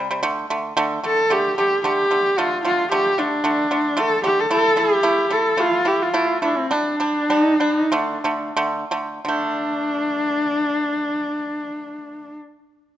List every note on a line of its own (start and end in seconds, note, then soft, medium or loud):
0.11 0.21 C3 medium
0.11 0.21 G3 medium
0.23 0.45 D3 loud
0.23 0.45 A3 loud
0.50 0.72 D3 medium
0.50 0.72 A3 loud
0.77 0.98 D3 loud
0.77 0.99 A3 loud
1.03 1.25 D3 medium
1.03 1.26 A3 medium
1.03 1.33 A4 medium
1.30 1.52 D3 medium
1.30 1.52 A3 medium
1.30 1.57 G4 loud
1.58 1.79 D3 medium
1.58 1.79 A3 medium
1.58 1.82 G4 medium
1.84 2.06 D3 medium
1.84 2.06 A3 loud
1.84 2.39 G4 loud
2.11 2.32 D3 medium
2.11 2.33 A3 medium
2.38 2.59 D3 medium
2.38 2.59 A3 loud
2.38 2.65 F4 loud
2.65 2.86 D3 medium
2.65 2.86 A3 medium
2.65 2.90 F4 medium
2.92 3.13 D3 medium
2.92 3.13 A3 loud
2.92 3.20 G4 loud
3.18 3.39 D3 medium
3.18 3.39 A3 medium
3.18 4.00 D4 medium
3.44 3.65 D3 medium
3.44 3.66 A3 loud
3.71 3.92 D3 medium
3.71 3.92 A3 medium
3.97 4.19 D3 medium
3.97 4.19 A3 loud
3.97 4.24 A4 loud
4.24 4.45 D3 medium
4.24 4.45 A3 medium
4.24 4.41 G4 medium
4.40 4.51 A4 medium
4.50 4.72 A3 medium
4.50 4.72 E4 loud
4.50 4.79 A4 loud
4.76 4.98 A3 medium
4.76 4.99 E4 medium
4.76 5.33 G4 loud
5.03 5.25 A3 medium
5.03 5.26 E4 loud
5.30 5.53 A3 medium
5.30 5.53 E4 medium
5.30 5.62 A4 medium
5.57 5.80 A3 medium
5.57 5.80 E4 loud
5.57 5.89 F4 loud
5.85 6.08 A3 medium
5.85 6.08 E4 medium
5.85 6.03 G4 medium
6.02 6.43 F4 medium
6.14 6.37 A3 medium
6.14 6.37 E4 loud
6.42 6.65 A3 medium
6.42 6.59 D4 medium
6.42 6.65 E4 medium
6.58 6.74 C4 medium
6.71 6.94 G3 medium
6.71 6.95 D4 loud
6.71 7.39 D4 medium
7.00 7.24 G3 medium
7.00 7.24 D4 medium
7.30 7.55 G3 medium
7.30 7.55 D4 loud
7.39 7.56 D#4 medium
7.56 7.76 D4 medium
7.60 7.86 G3 medium
7.60 7.86 D4 medium
7.76 7.94 D#4 medium
7.92 8.18 D3 loud
7.92 8.18 A3 loud
7.92 8.58 D4 medium
8.24 8.51 D3 medium
8.24 8.51 A3 medium
8.57 8.84 D3 loud
8.57 8.84 A3 loud
8.91 9.19 D3 medium
8.91 9.19 A3 medium
9.25 12.32 D3 medium
9.25 12.35 A3 medium
9.25 12.35 D4 medium